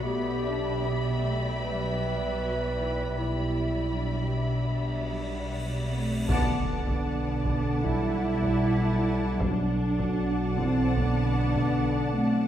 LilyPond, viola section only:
\new Staff \with { instrumentName = "Viola section" } { \time 4/4 \key b \minor \tempo 4 = 77 b8 d'8 b8 a8 g4 fis8 e8 | g2.~ g8 r8 | d''1 | d''1 | }